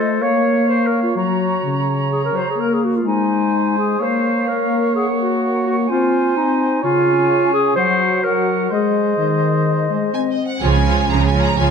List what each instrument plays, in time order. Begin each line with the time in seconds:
Already playing: french horn section A3, clarinet A4, oboe C5, flute section D#5
0.21 french horn section A#3, clarinet C#5, oboe C#5, flute section F5
0.69 clarinet C5
0.87 clarinet A#4
1.03 clarinet F4
1.15 french horn section F#3, clarinet F#4, oboe C#5, flute section A#5
1.64 french horn section C#3
2.12 clarinet G#4
2.25 clarinet A#4
2.33 french horn section F#3, clarinet C5
2.50 clarinet G#4
2.57 french horn section A#3, clarinet A#4
2.73 clarinet G#4
2.85 clarinet F#4
2.96 clarinet F4
3.05 french horn section G#3, clarinet D#4, oboe C5, flute section G#5
3.78 clarinet G#4
4.00 french horn section A#3, clarinet C5, oboe C#5, flute section F5
4.48 clarinet A#4
4.96 clarinet G#4, flute section F#5
5.21 clarinet F#4
5.66 clarinet F#4
5.89 french horn section C4, clarinet F4, oboe C5, flute section G#5
6.37 clarinet D#4
6.83 french horn section C#3, clarinet F4, oboe C#5, flute section G#5
7.54 clarinet G#4
7.76 french horn section F#3, clarinet C5, oboe C#5, flute section F#5
8.24 clarinet A#4, oboe C#5, flute section F#5
8.71 french horn section G#3, clarinet G#4, oboe C5, flute section D#5
9.18 french horn section D#3
9.90 french horn section G#3
10.14 french horn section C4, violin section G#5
10.31 violin section D#5
10.47 violin section F#5
10.61 double bass section C#2, cello section C#3, viola section F3 F4, violin section G#4 C#5 G#5
10.85 viola section F3 F4, violin section G#4 C#5
11.09 double bass section C#2, cello section C#3, viola section F3 F4, violin section G#4 C#5 A#5
11.25 violin section G#5
11.33 viola section F3 F4, violin section G#4 C#5
11.43 violin section A#5
11.56 double bass section C#2, cello section C#3, viola section F3 F4, violin section G#4 C#5 G#5